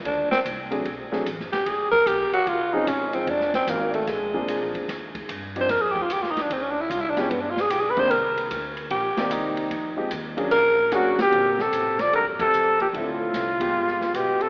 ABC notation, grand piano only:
X:1
M:4/4
L:1/8
Q:"Swing" 1/4=149
K:Eb
V:1 name="Grand piano"
z3 [^F,=A,CD^G] z [F,A,CDG] z2 | z4 z [F,C_DEA] z [F,A,CEF] | z4 z [F,B,CDA]3 | z3 [F,CDEG] z4 |
z3 [F,A,_CDG] z3 [E,B,=CDG] | z4 z [E,B,CGd]3 | z [F,A,CEG] z [_G,B,_D=DA] z2 [^F,B,^CDA] z | [K:Bb] [D,B,CA] z6 z |
[D,F,C=e]3 [F,_A,_CG]3 z2 |]